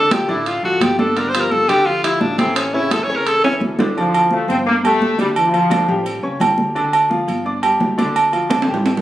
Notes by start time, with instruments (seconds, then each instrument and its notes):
Already playing: upright bass D2, tenor saxophone A4
0.11 grand piano F3 F4 A4, tenor saxophone G4, high conga, high timbale
0.28 upright bass A1, grand piano D3 D4 D5, tenor saxophone E4, high conga
0.46 tenor saxophone F4, high conga, high timbale
0.63 upright bass A1, grand piano F3 F4 A4, tenor saxophone F#4, high conga
0.81 upright bass G1, tenor saxophone G4, high conga, high timbale
0.99 grand piano D3 D4 D5, tenor saxophone A4, high conga
1.17 grand piano D3 D4 D5, tenor saxophone A#4, high conga, high timbale
1.29 tenor saxophone C5
1.34 grand piano F3 F4 G4, high conga, high timbale
1.41 tenor saxophone A#4
1.52 tenor saxophone A4, high conga
1.68 upright bass D2, grand piano D3 D4 D5, tenor saxophone G4, high conga, high timbale
1.86 grand piano F3 F4 G4, tenor saxophone F4, high conga
2.04 grand piano F3 F4 G4, tenor saxophone E4, high conga, high timbale
2.20 upright bass A1, tenor saxophone D4, high conga
2.38 grand piano E3 E4 A4, tenor saxophone C4, high conga, high timbale
2.56 tenor saxophone C#4, high conga, high timbale
2.74 grand piano C#3 C#4 C#5, tenor saxophone E4, high conga
2.91 grand piano E3 E4 A4, tenor saxophone A4, high conga, high timbale
3.04 upright bass E2, tenor saxophone C#5
3.09 grand piano C#3 C#4 C#5, high conga
3.16 tenor saxophone A#4
3.27 tenor saxophone A4, high conga, high timbale
3.44 grand piano E3 E4 A4, tenor saxophone C#4, high conga, high timbale
3.60 upright bass D2, high conga
3.79 grand piano D3 D4 D5, high conga, low timbale
3.96 grand piano D3 D4 D5, trombone section F3, high conga, low agogo
4.13 high conga, low agogo
4.31 grand piano F3 F4 F5, trombone section A3, high conga
4.48 upright bass G1, trombone section C4, high conga, low agogo
4.66 trombone section A#3, grand piano D4 D5 D6, high conga
4.84 grand piano G3 G4 G5, trombone section A3, high conga, low agogo
5.01 upright bass D2, high conga
5.19 grand piano D3 D4 D5, trombone section G3, high conga, low agogo
5.36 trombone section F3, high conga, low agogo
5.53 grand piano F3 F4 F5, high conga, low agogo
5.70 grand piano D3 D4 D5, high conga, low agogo
5.88 upright bass A1, grand piano G3 G4 G5, high conga
6.06 high conga, low agogo
6.23 upright bass C#2, grand piano C#4 C#5 C#6, high conga
6.40 upright bass D2, grand piano G3 G4 G5, high conga, low timbale, low agogo
6.58 high conga
6.75 grand piano D3 D4 D5, high conga, low agogo
6.93 high conga, low agogo
7.10 grand piano F3 F4 F5, high conga
7.28 upright bass G1, high conga, low agogo
7.45 grand piano D4 D5 D6, high conga
7.62 grand piano G3 G4 G5, high conga, low agogo
7.80 upright bass D2, high conga, low timbale
7.98 grand piano D3 D4 D5, high conga, low agogo
8.16 high conga, low agogo
8.32 grand piano F3 F4 F5, high conga, low agogo
8.49 grand piano D3 D4 D5, high conga, high timbale, low agogo
8.62 high timbale
8.67 upright bass A1, grand piano G3 G4 G5, high conga
8.74 low timbale
8.86 high conga, high timbale, low agogo
8.97 low timbale